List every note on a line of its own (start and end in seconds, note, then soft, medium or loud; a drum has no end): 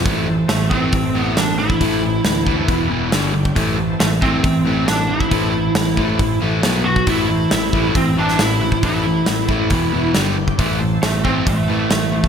0.06 0.43 A1 medium
0.06 0.26 A2 medium
0.06 0.27 E3 medium
0.06 0.27 A3 medium
0.06 3.10 E4 medium
0.06 2.67 C5 medium
0.06 2.67 A5 medium
0.06 kick loud
0.06 open hi-hat soft
0.28 0.48 A2 medium
0.28 0.48 E3 medium
0.49 0.87 A1 medium
0.49 0.70 A2 medium
0.49 0.70 E3 medium
0.49 0.69 A3 medium
0.49 snare loud
0.49 open hi-hat soft
0.70 0.92 A2 medium
0.70 0.93 E3 medium
0.70 0.93 A3 medium
0.70 1.19 C4 medium
0.70 kick medium
0.92 1.12 A1 medium
0.92 1.13 A2 medium
0.92 1.13 E3 medium
0.92 kick loud
0.92 open hi-hat soft
1.15 1.34 A1 medium
1.15 1.35 A2 medium
1.15 1.36 E3 medium
1.15 1.36 A3 medium
1.15 1.38 B3 medium
1.36 1.75 A1 medium
1.36 1.57 A2 medium
1.36 1.57 E3 medium
1.36 1.58 D4 medium
1.36 snare medium
1.36 open hi-hat soft
1.58 1.78 A2 medium
1.58 1.79 E3 medium
1.58 2.87 E4 medium
1.70 kick medium
1.80 2.18 A1 medium
1.80 2.01 A2 medium
1.80 2.01 E3 medium
1.80 2.01 A3 medium
1.80 kick medium
1.80 open hi-hat soft
2.02 2.22 A2 medium
2.02 2.22 E3 medium
2.25 2.62 D2 medium
2.25 2.45 A2 medium
2.25 2.45 E3 medium
2.25 snare loud
2.25 open hi-hat soft
2.46 2.67 A2 medium
2.46 2.67 E3 medium
2.46 2.68 A3 medium
2.46 kick medium
2.67 2.87 E1 medium
2.67 2.88 E2 medium
2.67 2.89 B2 medium
2.67 2.89 E3 medium
2.67 3.12 B4 medium
2.67 3.12 B5 medium
2.67 kick medium
2.67 open hi-hat soft
2.89 3.09 E1 medium
2.89 3.10 E2 medium
2.89 3.11 B2 medium
2.89 3.11 E3 loud
3.12 3.50 G1 medium
3.12 3.33 G2 medium
3.12 3.33 D3 medium
3.12 3.33 G3 medium
3.12 3.56 D4 medium
3.12 3.56 G4 medium
3.12 3.56 G5 medium
3.12 snare loud
3.12 open hi-hat soft
3.34 3.54 G2 medium
3.34 3.55 D3 medium
3.45 kick medium
3.55 3.94 A1 medium
3.55 3.77 A2 medium
3.55 3.77 E3 medium
3.55 3.77 A3 medium
3.55 6.60 E4 medium
3.55 6.60 C5 medium
3.55 6.60 A5 medium
3.55 kick medium
3.55 open hi-hat soft
3.78 3.98 A2 medium
3.78 3.98 E3 medium
4.00 4.38 A1 medium
4.00 4.20 A2 medium
4.00 4.21 E3 medium
4.00 4.07 A3 medium
4.00 snare loud
4.00 open hi-hat soft
4.21 4.42 A2 medium
4.21 4.43 E3 medium
4.21 4.43 A3 medium
4.21 4.88 C4 medium
4.21 kick medium
4.44 4.63 A1 medium
4.44 4.64 A2 medium
4.44 4.64 E3 medium
4.44 kick loud
4.44 open hi-hat soft
4.65 4.85 A1 medium
4.65 4.85 A2 medium
4.65 4.86 E3 medium
4.65 4.87 A3 medium
4.87 5.26 A1 medium
4.87 5.07 A2 medium
4.87 5.08 E3 medium
4.87 5.11 D4 medium
4.87 snare loud
4.87 open hi-hat soft
5.09 5.29 A2 medium
5.09 5.29 E3 medium
5.09 6.38 E4 medium
5.20 kick medium
5.31 5.69 A1 medium
5.31 5.52 A2 medium
5.31 5.52 E3 medium
5.31 5.53 A3 medium
5.31 kick medium
5.31 open hi-hat soft
5.53 5.73 A2 medium
5.53 5.73 E3 medium
5.75 6.13 A1 medium
5.75 5.95 A2 medium
5.75 5.96 E3 medium
5.75 snare loud
5.75 open hi-hat soft
5.96 6.18 A2 medium
5.96 6.18 E3 medium
5.96 6.18 A3 medium
5.96 kick medium
6.19 6.38 A1 medium
6.19 6.39 A2 medium
6.19 6.40 E3 medium
6.19 kick loud
6.19 open hi-hat soft
6.40 6.61 A1 medium
6.40 6.62 A2 medium
6.40 6.62 E3 medium
6.40 6.62 A3 medium
6.62 7.01 B1 medium
6.62 6.84 B2 medium
6.62 6.84 F#3 medium
6.62 6.84 B3 medium
6.62 7.07 F#4 medium
6.62 7.07 B4 medium
6.62 7.07 B5 medium
6.62 snare loud
6.62 open hi-hat medium
6.85 7.05 B2 medium
6.85 7.05 F#3 medium
6.85 7.06 F#4 medium
6.96 kick medium
7.07 7.44 A1 medium
7.07 7.28 A2 medium
7.07 7.28 E3 medium
7.07 7.29 A3 medium
7.07 7.51 E4 medium
7.07 10.13 E4 medium
7.07 9.69 C5 medium
7.07 9.69 A5 medium
7.07 kick medium
7.07 open hi-hat soft
7.29 7.49 A2 medium
7.29 7.49 E3 medium
7.51 7.89 A1 medium
7.51 7.71 A2 medium
7.51 7.71 E3 medium
7.51 7.93 E4 medium
7.51 snare loud
7.51 open hi-hat medium
7.73 7.94 A2 medium
7.73 7.94 E3 medium
7.73 7.95 A3 medium
7.73 kick medium
7.95 8.14 A1 medium
7.95 8.15 A2 medium
7.95 8.15 E3 medium
7.95 8.16 C4 medium
7.95 kick loud
7.95 open hi-hat soft
8.16 8.36 A1 medium
8.16 8.37 A2 medium
8.16 8.38 E3 medium
8.16 8.38 A3 medium
8.16 8.41 D4 medium
8.28 snare soft
8.39 8.77 A1 medium
8.39 8.59 A2 medium
8.39 8.59 E3 medium
8.39 8.84 E4 medium
8.39 snare loud
8.39 open hi-hat soft
8.62 8.81 A2 medium
8.62 8.81 E3 medium
8.72 kick medium
8.83 9.21 A1 medium
8.83 9.04 A2 medium
8.83 9.04 E3 medium
8.83 9.04 A3 medium
8.83 10.12 E4 medium
8.83 kick medium
8.83 open hi-hat soft
9.05 9.25 A2 medium
9.05 9.25 E3 medium
9.26 9.73 A1 medium
9.26 9.47 A2 medium
9.26 9.47 E3 medium
9.26 snare loud
9.26 open hi-hat medium
9.48 9.69 A2 medium
9.48 9.70 E3 medium
9.48 9.70 A3 medium
9.48 kick medium
9.70 9.90 E1 medium
9.70 9.91 E2 medium
9.70 9.92 B2 medium
9.70 9.92 E3 medium
9.70 10.15 B4 medium
9.70 10.16 B5 medium
9.70 kick medium
9.70 open hi-hat soft
9.92 10.12 E1 medium
9.92 10.13 E2 medium
9.92 10.14 B2 medium
9.92 10.14 E3 medium
10.14 10.53 G1 medium
10.14 10.35 G2 medium
10.14 10.35 D3 medium
10.14 10.36 G3 medium
10.14 10.59 D4 medium
10.14 10.59 G4 medium
10.14 10.59 G5 medium
10.14 snare loud
10.14 open hi-hat soft
10.37 10.57 G2 medium
10.37 10.57 D3 medium
10.48 kick medium
10.58 10.96 A1 medium
10.58 10.79 A2 medium
10.58 10.79 E3 medium
10.58 10.80 A3 medium
10.58 12.28 E4 medium
10.58 12.28 C5 medium
10.58 12.28 A5 medium
10.58 kick medium
10.58 open hi-hat soft
10.80 11.00 A2 medium
10.80 11.00 E3 medium
11.02 11.40 A1 medium
11.02 11.22 A2 medium
11.02 11.23 E3 medium
11.02 11.24 A3 medium
11.02 snare loud
11.02 open hi-hat soft
11.24 11.44 A2 medium
11.24 11.45 E3 medium
11.24 11.46 A3 medium
11.24 11.46 C4 medium
11.24 kick medium
11.46 11.65 A1 medium
11.46 11.66 A2 medium
11.46 11.66 E3 medium
11.46 12.28 A3 medium
11.46 kick loud
11.46 open hi-hat soft
11.68 11.88 A1 medium
11.68 11.89 A2 medium
11.68 11.89 E3 medium
11.68 11.89 A3 medium
11.90 12.28 A1 medium
11.90 12.10 A2 medium
11.90 12.10 E3 medium
11.90 snare loud
11.90 open hi-hat soft
12.12 12.28 A2 medium
12.12 12.28 E3 medium
12.24 kick medium